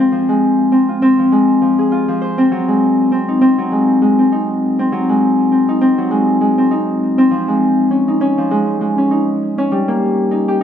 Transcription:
0.00 0.11 F3 medium
0.00 0.28 G#3 medium
0.00 0.71 C4 loud
0.00 0.29 D#4 loud
0.00 0.88 F4 medium
0.12 1.18 F3 medium
0.29 1.31 G#3 medium
0.72 1.02 C4 medium
0.89 1.91 F4 medium
1.02 2.38 C4 loud
1.19 1.60 F3 medium
1.32 2.56 G#3 medium
1.62 2.07 F3 medium
1.79 4.06 G#4 medium
1.92 2.57 F4 medium
2.08 2.56 F3 medium
2.22 4.20 C5 medium
2.38 3.11 C4 loud
2.51 3.57 F#3 medium
2.68 3.71 G#3 medium
3.12 3.41 C4 medium
3.28 4.32 D#4 medium
3.41 4.18 C4 loud
3.58 4.91 F#3 medium
3.72 4.01 G#3 medium
4.02 5.08 G#3 medium
4.19 4.79 C4 medium
4.32 5.68 D#4 medium
4.79 5.51 C4 loud
4.92 5.97 F#3 medium
5.09 6.10 G#3 medium
5.52 5.81 C4 medium
5.69 6.71 D#4 medium
5.81 6.58 C4 loud
5.98 7.36 F#3 medium
6.11 6.40 G#3 medium
6.41 7.36 G#3 medium
6.58 7.18 C4 medium
6.71 8.08 D#4 medium
7.18 7.97 C4 loud
7.31 8.37 F3 medium
7.48 8.50 G#3 medium
7.91 8.20 C#4 medium
8.08 9.11 D#4 medium
8.21 8.97 C#4 loud
8.38 9.76 F3 medium
8.51 8.80 G#3 medium
8.81 9.76 G#3 medium
8.98 9.58 C#4 medium
9.11 10.31 D#4 medium
9.58 10.63 C#4 loud
9.72 10.63 G3 medium
9.88 10.63 A#3 medium
10.31 10.60 D#4 medium
10.48 10.63 G4 medium

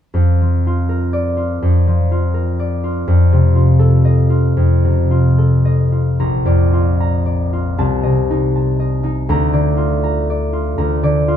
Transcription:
0.14 1.61 F2 soft
0.41 1.86 F3 soft
0.67 1.36 F4 soft
0.89 2.33 A#4 soft
1.13 2.58 D5 soft
1.37 2.10 F4 soft
1.62 3.06 F2 soft
1.87 5.77 F3 soft
2.12 2.82 F4 soft
2.34 3.10 A#4 soft
2.59 3.10 D5 soft
2.84 3.54 F4 soft
3.08 4.56 F2 medium
3.32 4.83 C3 soft
3.55 4.29 F4 soft
3.79 5.37 A4 medium
4.05 5.64 D#5 medium
4.30 5.09 F4 soft
4.57 6.24 F2 soft
4.85 6.25 C3 soft
5.11 5.91 F4 soft
5.38 6.24 A4 soft
5.65 6.24 D#5 soft
5.92 6.72 F4 soft
6.19 7.81 A#1 medium
6.19 6.99 A#5 medium
6.45 7.80 F2 soft
6.45 7.25 D5 soft
6.73 7.52 F4 soft
7.00 7.82 A#5 medium
7.26 7.81 D5 soft
7.53 7.82 F4 soft
7.78 9.33 C2 medium
7.78 8.55 A5 medium
8.03 9.33 C3 soft
8.03 8.78 D#5 soft
8.30 9.02 D#4 soft
8.56 9.33 A5 soft
8.80 9.33 D#5 soft
9.03 9.32 D#4 soft
9.29 10.77 D2 medium
9.29 10.02 A#5 medium
9.53 11.02 D3 soft
9.53 10.29 D5 soft
9.77 10.52 F4 soft
10.04 10.77 A#5 medium
10.30 11.02 D5 soft
10.53 11.27 F4 soft
10.78 11.37 D2 medium
10.78 11.37 A#5 medium
11.03 11.37 D3 soft
11.03 11.37 D5 medium
11.28 11.37 F4 medium

